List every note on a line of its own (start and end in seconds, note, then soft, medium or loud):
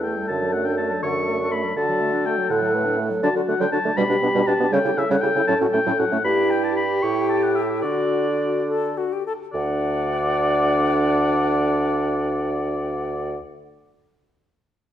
0.00 0.16 E2 medium
0.00 0.26 E4 medium
0.00 1.73 A4 medium
0.00 0.27 G5 medium
0.04 0.18 A3 medium
0.17 0.29 G3 medium
0.28 0.91 F#2 medium
0.28 0.43 D3 medium
0.28 1.75 D4 medium
0.28 0.54 A5 medium
0.42 0.55 F#3 medium
0.53 0.67 A3 medium
0.53 0.67 F#5 medium
0.65 0.80 D4 medium
0.65 0.77 G5 medium
0.77 0.92 A3 medium
0.77 1.02 A5 medium
0.90 1.04 F#3 medium
1.03 1.65 F#2 medium
1.03 1.17 D3 medium
1.03 1.53 C#6 loud
1.15 1.29 F#3 medium
1.27 1.41 A3 medium
1.40 1.53 D4 medium
1.51 1.65 A3 medium
1.51 1.76 B5 medium
1.64 1.75 F#3 medium
1.76 1.90 D3 medium
1.76 2.38 D3 medium
1.76 2.52 F#4 medium
1.76 2.98 A4 medium
1.76 2.27 A5 loud
1.88 2.02 F#3 medium
2.00 2.14 A3 medium
2.13 2.27 D4 medium
2.25 2.39 A3 medium
2.25 2.49 G5 loud
2.37 2.51 F#3 medium
2.49 3.11 A2 medium
2.49 2.63 D3 medium
2.49 2.76 A4 medium
2.49 3.06 F#5 loud
2.62 2.75 F#3 medium
2.74 2.87 A3 medium
2.74 3.01 B4 medium
2.86 2.99 D4 medium
2.98 3.12 A3 medium
2.98 3.25 A4 medium
3.10 3.22 F#3 medium
3.22 3.29 D3 medium
3.22 3.28 F#3 medium
3.22 3.29 D4 medium
3.22 3.72 F#4 medium
3.22 3.35 A5 loud
3.35 3.42 D3 medium
3.35 3.41 D4 medium
3.35 3.42 F#4 medium
3.48 3.54 D3 medium
3.48 3.53 A3 medium
3.48 3.54 D4 medium
3.48 3.62 F#5 loud
3.59 3.66 D3 medium
3.59 3.65 F#3 loud
3.59 3.67 D4 medium
3.59 3.72 G5 loud
3.72 3.79 D3 medium
3.72 3.78 D4 medium
3.72 3.79 F#4 medium
3.72 3.99 A5 loud
3.84 3.91 D3 medium
3.84 3.90 A3 medium
3.84 3.91 D4 medium
3.96 4.03 B2 medium
3.96 4.02 G3 loud
3.96 4.04 D4 medium
3.96 4.74 G4 medium
3.96 4.48 B5 loud
4.09 4.16 B2 medium
4.09 4.15 D4 medium
4.09 4.16 G4 medium
4.22 4.29 B2 medium
4.22 4.28 B3 medium
4.22 4.29 D4 medium
4.34 4.41 B2 loud
4.34 4.40 G3 medium
4.34 4.42 D4 medium
4.47 4.53 B2 medium
4.47 4.53 D4 medium
4.47 4.54 G4 medium
4.47 4.74 A5 loud
4.59 4.66 B2 medium
4.59 4.65 B3 medium
4.59 4.67 D4 medium
4.72 4.79 C#3 loud
4.72 4.78 G3 medium
4.72 4.79 C#4 medium
4.72 6.25 A4 loud
4.72 4.99 G5 loud
4.85 4.91 C#3 medium
4.85 4.91 E4 medium
4.85 4.92 G4 medium
4.96 5.03 C#3 medium
4.96 5.02 C#4 medium
4.96 5.04 E4 medium
4.96 5.11 E5 loud
5.09 5.16 C#3 loud
5.09 5.15 G3 medium
5.09 5.17 C#4 medium
5.09 5.23 F#5 loud
5.22 5.29 C#3 medium
5.22 5.28 E4 medium
5.22 5.29 G4 medium
5.22 5.47 G5 loud
5.35 5.42 C#3 medium
5.35 5.41 C#4 medium
5.35 5.42 E4 medium
5.47 5.54 A2 medium
5.47 5.53 F#3 medium
5.47 5.54 C#4 medium
5.47 5.59 A5 loud
5.61 5.67 A2 medium
5.61 5.66 C#4 medium
5.61 5.67 F#4 medium
5.73 5.80 A2 medium
5.73 5.79 A3 medium
5.73 5.80 C#4 medium
5.73 6.00 G5 loud
5.86 5.92 A2 loud
5.86 5.92 F#3 medium
5.86 5.92 C#4 medium
5.99 6.05 A2 medium
5.99 6.04 C#4 medium
5.99 6.05 F#4 medium
5.99 6.23 F#5 loud
6.11 6.18 A2 medium
6.11 6.17 A3 medium
6.11 6.17 C#4 medium
6.24 6.99 G2 medium
6.24 6.86 E4 medium
6.24 7.80 G4 loud
6.24 6.99 G4 medium
6.24 6.52 B5 loud
6.50 6.66 G5 loud
6.64 6.76 A5 medium
6.76 7.04 B5 loud
7.02 7.85 A2 medium
7.02 7.85 E4 medium
7.02 7.85 G4 medium
7.02 7.29 C#6 loud
7.29 7.45 A5 loud
7.43 7.57 F#5 medium
7.55 7.81 E5 medium
7.82 9.26 D3 medium
7.82 9.26 D4 medium
7.82 9.09 F#4 medium
7.82 8.62 F#4 medium
7.82 8.65 D5 medium
8.68 8.99 A4 medium
8.98 9.14 F#4 medium
9.13 9.26 G4 medium
9.26 9.33 A4 medium
9.53 13.37 D2 medium
9.53 13.37 D3 medium
9.53 13.37 D4 medium
9.53 13.35 D5 loud
9.53 13.37 F#5 medium